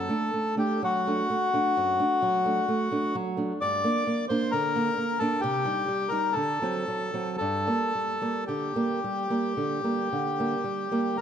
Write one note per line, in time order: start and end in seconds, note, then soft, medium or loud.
0.00 0.55 A4 medium
0.09 0.30 A3 soft
0.09 0.31 D4 soft
0.34 0.56 A3 soft
0.57 0.79 A3 soft
0.57 0.79 D4 soft
0.57 0.82 G4 soft
0.82 1.21 F#3 soft
0.82 3.16 F#4 medium
1.07 1.28 A3 soft
1.07 1.28 D4 soft
1.30 1.52 A3 soft
1.53 1.74 A3 soft
1.53 1.74 D4 soft
1.77 1.99 F#2 soft
2.00 2.20 A3 soft
2.00 2.20 D4 soft
2.22 2.59 F#3 soft
2.46 2.66 A3 soft
2.46 2.66 D4 soft
2.68 2.90 A3 soft
2.91 3.12 A3 soft
2.91 3.13 D4 soft
3.15 3.52 F#3 soft
3.37 3.58 A3 soft
3.37 3.58 D4 soft
3.61 3.83 G2 soft
3.61 4.25 D5 medium
3.84 4.04 A#3 soft
3.84 4.05 D4 soft
4.07 4.29 A#3 soft
4.29 4.50 A#3 soft
4.29 4.51 D4 soft
4.29 4.51 C5 medium
4.51 4.89 D3 soft
4.51 5.19 A#4 medium
4.76 4.95 A#3 soft
4.76 4.96 D4 soft
4.97 5.20 A#3 soft
5.19 5.40 A#3 soft
5.19 5.41 D4 soft
5.19 5.41 A4 medium
5.41 5.64 C3 medium
5.41 6.10 G4 medium
5.65 5.85 G3 soft
5.65 5.85 D#4 soft
5.88 6.11 G3 soft
6.09 6.33 G3 soft
6.09 6.33 D#4 soft
6.09 6.34 A#4 medium
6.33 6.60 D3 soft
6.33 7.36 A4 medium
6.62 6.85 F#3 soft
6.62 6.85 C4 soft
6.88 7.13 F#3 soft
7.14 7.38 F#3 soft
7.14 7.38 C4 soft
7.37 7.67 G2 soft
7.37 8.44 A4 medium
7.67 7.92 G3 soft
7.67 7.92 A#3 soft
7.95 8.20 G3 soft
8.21 8.45 G3 soft
8.21 8.46 A#3 soft
8.47 8.76 D3 soft
8.47 11.17 G4 soft
8.76 8.99 G3 soft
8.76 8.99 A#3 soft
9.04 9.29 G3 soft
9.30 9.54 G3 soft
9.30 9.53 A#3 soft
9.57 9.82 D3 soft
9.84 10.08 G3 soft
9.84 10.08 A#3 soft
10.12 10.54 D3 soft
10.40 10.63 G3 soft
10.40 10.63 A#3 soft
10.64 10.90 G3 soft
10.91 11.15 G3 soft
10.91 11.16 A#3 soft
11.17 11.21 A#4 medium